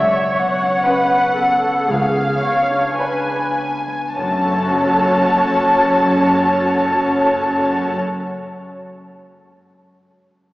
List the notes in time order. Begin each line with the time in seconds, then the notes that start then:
Already playing: C#2 C#3 F#3 B3 B4 C#5 E5
0.15 G#3
0.39 B3 F#5
0.62 C#4
0.87 C#4 G#4 B4
1.11 C#4
1.36 B3 A4
1.62 G#3
1.88 C#2 C#3 G#4 F5
2.15 G#3
2.42 B3 C#5
2.70 D4
2.98 D4 G#4 B4 G#5
3.27 D4
3.56 B3
3.87 G#3
4.16 F#1 F#2 C#4 F#4 A4 C#5 A5
4.23 F#3
4.30 A3
4.37 C#4
4.44 A4
4.51 C#5